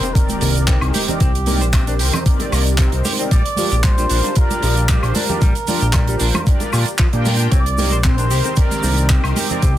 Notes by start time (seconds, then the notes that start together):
Already playing: D#3 C4 G4 A#4 C5, sub drop
0.03 C4, closed hi-hat, high bongo, shaker
0.14 D#3 C4 G4 A#4 D5, kick, closed hi-hat, shaker
0.29 closed hi-hat, high conga, shaker
0.41 C2 A#3, open hi-hat, high bongo, shaker
0.55 closed hi-hat, shaker
0.67 C4 D#4 G4 A#4 C5, kick, clap, closed hi-hat, shaker
0.81 C2, closed hi-hat, high woodblock
0.87 G#4
0.93 G4, open hi-hat, high conga, shaker
1.07 C4 D#4 G4 A#4 D5, closed hi-hat, low conga, shaker
1.20 C2 C4, kick, closed hi-hat, shaker
1.35 closed hi-hat
1.46 A#3 C4 D#4 G4 A#4 D5, open hi-hat, high conga, shaker
1.61 A#1 C5, closed hi-hat, shaker
1.73 C4, kick, clap, closed hi-hat, high woodblock, shaker
1.87 D#3 C4 D4 G4 A#4 C5, closed hi-hat, shaker
1.99 C2 G4, open hi-hat, shaker
2.13 C4, closed hi-hat, high bongo, low conga, high woodblock, shaker
2.26 D#3 C4 G4 A#4 D5, kick, closed hi-hat, shaker
2.40 closed hi-hat, high bongo, high conga, shaker
2.52 C2 A#3, open hi-hat, high woodblock, shaker
2.67 closed hi-hat, shaker
2.78 C4 D#4 G4 A#4 C5, kick, clap, closed hi-hat, shaker
2.92 C2, closed hi-hat
3.05 G4, open hi-hat, high bongo, high conga, shaker
3.19 C4 D#4 G4 A#4 D5, closed hi-hat, shaker
3.31 A#1 G3 D5, kick, closed hi-hat, shaker
3.46 closed hi-hat
3.56 F3 D4 F4 G4 A#4 D5, open hi-hat, high conga, shaker
3.72 A#1 G4, closed hi-hat, shaker
3.83 G3 C5, kick, clap, closed hi-hat, shaker
3.97 G3 D4 F4 G4 A#4 C5, closed hi-hat, shaker
4.09 A#1 D4, open hi-hat, shaker
4.24 G3, closed hi-hat, high bongo, shaker
4.35 D4 F4 G4 A#4 D5, kick, closed hi-hat, shaker
4.51 closed hi-hat, high conga, shaker
4.62 A#1 F3, open hi-hat, high bongo, shaker
4.77 closed hi-hat, shaker
4.89 G3 D4 F4 G4 A#4 C5, kick, clap, closed hi-hat, shaker
5.03 A#1, closed hi-hat, high woodblock
5.15 D4 A#4, open hi-hat, high conga, shaker
5.29 G3 D4 F4 G4 A#4 D5, closed hi-hat, low conga, shaker
5.41 A#1 G3, kick, closed hi-hat, shaker
5.55 closed hi-hat, shaker
5.67 F3 D4 F4 G4 A#4 D5, open hi-hat, high conga, shaker
5.81 A#1 G4, closed hi-hat, shaker
5.93 G3, kick, clap, closed hi-hat, high woodblock, shaker
6.07 G3 D4 F4 G4 A#4 C5, closed hi-hat, shaker
6.20 A#1 D4, open hi-hat, shaker
6.34 G3, closed hi-hat, high bongo, high conga, low conga, high woodblock, shaker
6.46 D4 F4 G4 A#4 D5, kick, closed hi-hat, shaker
6.60 closed hi-hat, high bongo, high conga, shaker
6.72 A#2 G3 D4 F4 G4 A#4 D5, open hi-hat, high woodblock, shaker
6.86 closed hi-hat, shaker
6.98 F3, kick, clap, closed hi-hat, shaker
7.12 A#2 D4 F4 G4 A#4 G5, closed hi-hat
7.25 G2, open hi-hat, high bongo, high conga, shaker
7.39 D4, closed hi-hat, shaker
7.52 C2 C4 D5, kick, closed hi-hat, shaker
7.66 closed hi-hat
7.77 A#3 C4 D#4 G4 A#4 D5, open hi-hat, high conga, shaker
7.91 A#1 C5, closed hi-hat, shaker
8.04 C4 C5, kick, clap, closed hi-hat, shaker
8.18 D#3 C4 D4 G4 A#4 C5, closed hi-hat, shaker
8.30 C2 G4, open hi-hat, shaker
8.44 C4, closed hi-hat, high bongo, shaker
8.56 D#3 C4 G4 A#4 D5, kick, closed hi-hat, shaker
8.71 closed hi-hat, high conga, shaker
8.83 C2 A#3, open hi-hat, high bongo, shaker
8.97 closed hi-hat, shaker
9.09 C4 D#4 G4 A#4 C5, kick, clap, closed hi-hat, shaker
9.24 C2, closed hi-hat, high woodblock
9.36 G4, open hi-hat, high conga, shaker
9.50 C4 D#4 G4 A#4 D5, closed hi-hat, low conga, shaker
9.62 C2 C4, kick, closed hi-hat, shaker